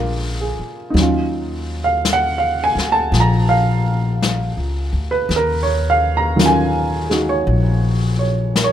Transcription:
Already playing: A#1 D3 G#3 A#3 F4 A#4 D5 F5
0.41 G#4
0.59 muted upright bass stroke
0.90 D#2 D#4
0.95 F#3 C#4, brush sweep, snare
1.02 F4
1.84 F5
2.05 brush sweep, snare, hi-hat pedal
2.13 F#5
2.38 F5
2.64 G#5
2.75 D2, snare
2.92 A5
3.12 A#1, brush sweep, snare
3.20 A#5
3.49 F5
4.22 brush sweep, snare, hi-hat pedal
4.57 C#2
4.93 D2
5.11 B4
5.29 D#2, brush sweep, snare
5.36 A#4
5.63 C#5
5.90 F5
6.17 A#5
6.36 D#3 F#3 C#4, brush sweep, snare, hi-hat pedal
6.41 F4
6.46 G#5
7.09 G#3 D#4 F#4, snare
7.29 C#5
7.46 A#1, brush sweep
8.19 C#5
8.56 A#4, brush sweep, snare, hi-hat pedal
8.64 C#5

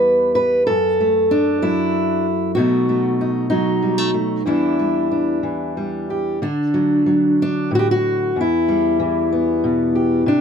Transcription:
Already playing: E2 G3 B3 B4
0.35 B4
0.67 F#2 A4
1.00 A3
1.31 D4
1.62 F#3 E4
2.55 B2 F#3 A3 D#4 F#4
2.89 A3
3.21 D#4
3.50 F#3 D#4
3.82 G3
3.98 A3
4.14 A3
4.46 E2 E3 G3 D4 E4
4.79 G3
5.11 D4
5.43 E3
5.77 G3
6.10 G4
6.42 D3 D4
6.74 F#3
7.06 F#3
7.42 D4
7.71 A2
7.75 F#4
7.79 G4
7.91 F#4
8.36 E2
8.41 E4
8.68 G3
9.00 E3
9.32 B3
9.64 B2
9.95 G4
10.26 C3 D4

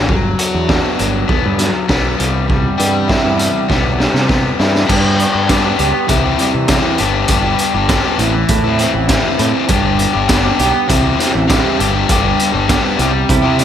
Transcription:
Already playing: A1
0.09 G1 F#3 B3 F#4, kick
0.39 F#4, closed hi-hat
0.55 E2
0.69 D4, kick, snare
0.99 G1 F#3, closed hi-hat
1.28 B3, kick
1.46 G2
1.59 F#3, snare, closed hi-hat
1.88 B1 B3, kick, snare
2.18 C2 E3 G3 E4, closed hi-hat
2.48 G3, kick
2.78 G2 G4, closed hi-hat
3.08 E4, kick, snare
3.25 G2
3.39 G3, closed hi-hat
3.68 B1 B3, kick, snare
3.99 G3, snare
4.14 C3, snare
4.28 B3, kick, snare
4.59 G2 E4, snare
4.75 snare
4.87 G2 B3 D4 G4, kick, crash
5.19 closed hi-hat
5.32 G2 D4 G4
5.48 B3 D4 G4, kick, snare, closed hi-hat
5.63 D4 G4
5.76 C#2 B3 D4 G4, closed hi-hat
5.93 muted overdriven electric guitar stroke
6.07 C2 C3 E3 C4 E4 G4, kick, closed hi-hat
6.22 C4 E4 G4
6.38 E3 G3 C4 E4 G4, closed hi-hat
6.54 C3, muted overdriven electric guitar stroke
6.68 E3 C4 E4 G4, kick, snare, closed hi-hat
6.98 G1 G2 B3 D4 G4, closed hi-hat
7.14 D4 G4
7.28 G1 G2 B3 D4 G4, kick, closed hi-hat
7.59 closed hi-hat
7.74 G1 D4 G4
7.88 B3 D4 G4, kick, snare, closed hi-hat
8.04 D4 G4
8.18 A1 A2 E3 C4 E4, closed hi-hat
8.35 muted overdriven electric guitar stroke
8.48 A2 E4, kick, closed hi-hat
8.64 C4 E4
8.79 E3 C4 E4, closed hi-hat
8.93 A1, muted overdriven electric guitar stroke
9.08 E3 C4 E4, kick, snare, closed hi-hat
9.39 A2 C4, closed hi-hat
9.54 C4 E4
9.68 G1 G2 B3 D4 G4, kick, closed hi-hat
9.99 closed hi-hat
10.14 G1 D4 G4
10.28 B3 D4 G4, kick, snare, closed hi-hat
10.44 D4 G4
10.58 B1 B3 D4 G4, closed hi-hat
10.74 muted overdriven electric guitar stroke
10.88 C2 C3 E3 C4 E4 G4, kick, closed hi-hat
11.03 C4 E4 G4
11.17 E3 C4 E4 G4, snare, closed hi-hat
11.34 A1, muted overdriven electric guitar stroke
11.47 E3 G3 C4 E4 G4, kick, snare, closed hi-hat
11.77 G1 G2 G3 B3 D4 G4, closed hi-hat
11.93 B3 D4 G4
12.08 G1 G2 G3 B3 D4 G4, kick, closed hi-hat
12.39 closed hi-hat
12.52 G1 B3 D4 G4
12.67 G3 B3 D4 G4, kick, snare, closed hi-hat
12.83 B3 D4 G4
12.97 C2 C3 G3 C4 E4 G4, closed hi-hat
13.13 muted overdriven electric guitar stroke
13.29 C3 E4, kick, closed hi-hat
13.42 C4 E4 G4
13.57 G3 C4 E4 G4, snare, closed hi-hat

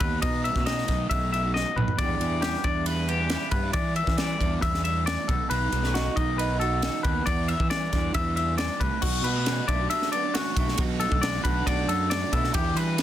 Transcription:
0.00 D#2 B2 B4, kick, ride
0.22 B2 D#3 D#5, kick, ride
0.44 G3 E5, ride
0.55 B2 A3, kick, snare
0.66 D#4 D#5, snare, ride
0.78 snare
0.88 B1 D#3, kick, snare, ride
1.10 B1 D#4 E5, kick, ride
1.33 E4 E5, ride
1.44 F#4
1.54 D#4 D#5, snare
1.76 B1 B2 B4, mid tom
1.88 floor tom
1.98 E2 E3 G3 D4 D5, kick, ride
2.02 G4
2.19 E2 E3, ride
2.42 G3 G4, snare, ride
2.54 snare
2.64 E2 D4 D5, kick, ride
2.86 E3 B4, ride
3.09 B3 G4, ride
3.19 D4
3.30 E4, snare, ride
3.51 G2 B3 B4, kick, ride
3.63 D4
3.73 E2 E3 D5, kick, ride
3.96 E3 E5, ride
4.07 E3, kick, snare
4.17 G3 D5, snare, ride
4.40 E2 D4, kick, ride
4.62 E2 E3 E5, kick, ride
4.74 snare
4.84 G2 E5, ride
5.04 A2 D5, snare, ride
5.28 B1 B2 A4, kick, ride
5.50 B1 D#3 B4, ride
5.72 B1 G3, ride
5.83 A3, snare
5.94 D#4 F#4, snare, ride
6.16 B1 D#3 D#5, kick, ride
6.38 D#4 B4, ride
6.60 F#4 A4, ride
6.82 D#4, snare, ride
7.03 D#2 B2 B4, kick, ride
7.26 E2 D5, kick, ride
7.48 E3 E5, ride
7.60 E3, kick
7.70 G3 D5, snare, ride
7.92 E2 D4, kick, snare, ride
8.14 E2 E3 E5, kick, ride
8.36 D4 E5, ride
8.58 G2 D5, snare, ride
8.80 C2 A2 B4, kick, ride
9.02 B1 B2 F#4, kick, crash
9.22 B2 G3 B4, ride
9.35 A3
9.46 snare, ride
9.68 B1 D3 E4 D5, kick, ride
9.81 F#4
9.90 E5, ride
10.02 snare
10.12 F#2 B3 D5, ride
10.23 D4
10.34 A3 F#4, snare, ride
10.56 B1 E4, kick, ride
10.68 F#4, snare
10.78 B1 B2 F#4, kick, ride
11.00 A3 A4, ride
11.12 B1, kick
11.21 D5, snare, ride
11.44 B1 D3 F#4 B4, kick, ride
11.66 B1 D5, kick, ride
11.87 F#2 D4 A4, ride
12.10 A3 D5, snare, ride
12.32 B2 E4 A4, kick, ride
12.44 F#4, snare
12.52 E2 E4 G4, kick, ride
12.64 G4
12.74 E3 G3 B4, ride
12.98 snare, ride

